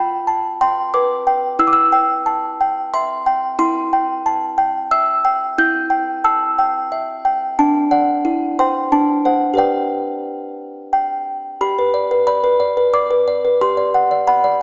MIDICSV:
0, 0, Header, 1, 2, 480
1, 0, Start_track
1, 0, Tempo, 663717
1, 1167, Time_signature, 3, 2, 24, 8
1, 5966, Tempo, 668896
1, 10539, End_track
2, 0, Start_track
2, 0, Title_t, "Music box"
2, 0, Program_c, 0, 10
2, 0, Note_on_c, 0, 65, 56
2, 0, Note_on_c, 0, 79, 46
2, 0, Note_on_c, 0, 83, 80
2, 197, Note_on_c, 0, 81, 40
2, 352, Note_off_c, 0, 79, 0
2, 416, Note_off_c, 0, 83, 0
2, 441, Note_on_c, 0, 84, 83
2, 442, Note_off_c, 0, 81, 0
2, 443, Note_on_c, 0, 79, 49
2, 674, Note_off_c, 0, 84, 0
2, 678, Note_on_c, 0, 86, 83
2, 681, Note_on_c, 0, 71, 46
2, 829, Note_off_c, 0, 79, 0
2, 918, Note_on_c, 0, 79, 50
2, 1068, Note_off_c, 0, 71, 0
2, 1136, Note_off_c, 0, 65, 0
2, 1143, Note_off_c, 0, 86, 0
2, 1150, Note_on_c, 0, 64, 57
2, 1153, Note_on_c, 0, 88, 95
2, 1162, Note_off_c, 0, 79, 0
2, 1210, Note_off_c, 0, 88, 0
2, 1210, Note_on_c, 0, 86, 79
2, 1250, Note_on_c, 0, 88, 100
2, 1264, Note_off_c, 0, 86, 0
2, 1392, Note_on_c, 0, 79, 53
2, 1635, Note_on_c, 0, 81, 43
2, 1783, Note_off_c, 0, 79, 0
2, 1880, Note_off_c, 0, 81, 0
2, 1885, Note_on_c, 0, 79, 49
2, 2089, Note_off_c, 0, 88, 0
2, 2123, Note_on_c, 0, 84, 90
2, 2126, Note_on_c, 0, 76, 47
2, 2270, Note_off_c, 0, 79, 0
2, 2360, Note_on_c, 0, 79, 51
2, 2510, Note_off_c, 0, 76, 0
2, 2569, Note_off_c, 0, 64, 0
2, 2586, Note_off_c, 0, 84, 0
2, 2594, Note_on_c, 0, 64, 67
2, 2596, Note_on_c, 0, 84, 99
2, 2603, Note_off_c, 0, 79, 0
2, 2841, Note_on_c, 0, 79, 52
2, 3080, Note_on_c, 0, 81, 48
2, 3228, Note_off_c, 0, 79, 0
2, 3311, Note_on_c, 0, 79, 55
2, 3323, Note_off_c, 0, 81, 0
2, 3531, Note_off_c, 0, 84, 0
2, 3553, Note_on_c, 0, 88, 90
2, 3554, Note_on_c, 0, 76, 50
2, 3702, Note_off_c, 0, 79, 0
2, 3795, Note_on_c, 0, 79, 45
2, 3943, Note_off_c, 0, 76, 0
2, 4010, Note_off_c, 0, 64, 0
2, 4019, Note_off_c, 0, 88, 0
2, 4037, Note_on_c, 0, 64, 62
2, 4039, Note_on_c, 0, 91, 96
2, 4040, Note_off_c, 0, 79, 0
2, 4268, Note_on_c, 0, 79, 51
2, 4503, Note_off_c, 0, 91, 0
2, 4515, Note_on_c, 0, 81, 44
2, 4517, Note_on_c, 0, 88, 95
2, 4661, Note_off_c, 0, 79, 0
2, 4761, Note_off_c, 0, 81, 0
2, 4762, Note_on_c, 0, 79, 53
2, 5003, Note_on_c, 0, 76, 42
2, 5148, Note_off_c, 0, 79, 0
2, 5243, Note_on_c, 0, 79, 48
2, 5389, Note_off_c, 0, 76, 0
2, 5453, Note_off_c, 0, 88, 0
2, 5454, Note_off_c, 0, 64, 0
2, 5485, Note_off_c, 0, 79, 0
2, 5487, Note_on_c, 0, 62, 59
2, 5488, Note_on_c, 0, 81, 81
2, 5721, Note_on_c, 0, 74, 45
2, 5722, Note_on_c, 0, 78, 47
2, 5941, Note_off_c, 0, 74, 0
2, 5941, Note_off_c, 0, 78, 0
2, 5954, Note_off_c, 0, 62, 0
2, 5965, Note_on_c, 0, 64, 54
2, 6179, Note_off_c, 0, 81, 0
2, 6211, Note_on_c, 0, 72, 41
2, 6211, Note_on_c, 0, 84, 78
2, 6215, Note_on_c, 0, 79, 45
2, 6425, Note_off_c, 0, 72, 0
2, 6427, Note_off_c, 0, 79, 0
2, 6431, Note_off_c, 0, 64, 0
2, 6439, Note_off_c, 0, 84, 0
2, 6447, Note_on_c, 0, 62, 48
2, 6448, Note_on_c, 0, 81, 76
2, 6686, Note_on_c, 0, 72, 37
2, 6689, Note_on_c, 0, 78, 39
2, 6889, Note_on_c, 0, 67, 49
2, 6900, Note_on_c, 0, 71, 37
2, 6904, Note_off_c, 0, 72, 0
2, 6905, Note_off_c, 0, 78, 0
2, 6910, Note_off_c, 0, 81, 0
2, 6914, Note_off_c, 0, 62, 0
2, 6914, Note_on_c, 0, 74, 33
2, 6923, Note_on_c, 0, 79, 66
2, 7861, Note_off_c, 0, 79, 0
2, 7888, Note_on_c, 0, 79, 65
2, 8326, Note_off_c, 0, 67, 0
2, 8331, Note_off_c, 0, 71, 0
2, 8338, Note_off_c, 0, 74, 0
2, 8353, Note_off_c, 0, 79, 0
2, 8377, Note_on_c, 0, 67, 54
2, 8378, Note_on_c, 0, 83, 80
2, 8503, Note_on_c, 0, 71, 39
2, 8613, Note_on_c, 0, 74, 45
2, 8690, Note_off_c, 0, 71, 0
2, 8737, Note_on_c, 0, 71, 43
2, 8805, Note_off_c, 0, 74, 0
2, 8836, Note_off_c, 0, 83, 0
2, 8851, Note_on_c, 0, 83, 79
2, 8852, Note_on_c, 0, 74, 46
2, 8927, Note_off_c, 0, 71, 0
2, 8971, Note_on_c, 0, 71, 44
2, 9045, Note_off_c, 0, 74, 0
2, 9087, Note_on_c, 0, 74, 44
2, 9164, Note_off_c, 0, 71, 0
2, 9211, Note_on_c, 0, 71, 42
2, 9282, Note_off_c, 0, 74, 0
2, 9312, Note_off_c, 0, 83, 0
2, 9327, Note_on_c, 0, 74, 43
2, 9329, Note_on_c, 0, 86, 91
2, 9403, Note_off_c, 0, 71, 0
2, 9451, Note_on_c, 0, 71, 44
2, 9522, Note_off_c, 0, 74, 0
2, 9573, Note_on_c, 0, 74, 40
2, 9643, Note_off_c, 0, 71, 0
2, 9695, Note_on_c, 0, 71, 43
2, 9764, Note_off_c, 0, 74, 0
2, 9784, Note_off_c, 0, 67, 0
2, 9790, Note_off_c, 0, 86, 0
2, 9813, Note_off_c, 0, 71, 0
2, 9815, Note_on_c, 0, 67, 55
2, 9816, Note_on_c, 0, 84, 95
2, 9930, Note_on_c, 0, 74, 41
2, 10052, Note_on_c, 0, 78, 47
2, 10121, Note_off_c, 0, 74, 0
2, 10172, Note_on_c, 0, 74, 41
2, 10242, Note_off_c, 0, 78, 0
2, 10272, Note_off_c, 0, 84, 0
2, 10288, Note_on_c, 0, 78, 49
2, 10290, Note_on_c, 0, 83, 83
2, 10362, Note_off_c, 0, 74, 0
2, 10408, Note_on_c, 0, 74, 45
2, 10480, Note_off_c, 0, 78, 0
2, 10539, Note_off_c, 0, 67, 0
2, 10539, Note_off_c, 0, 74, 0
2, 10539, Note_off_c, 0, 83, 0
2, 10539, End_track
0, 0, End_of_file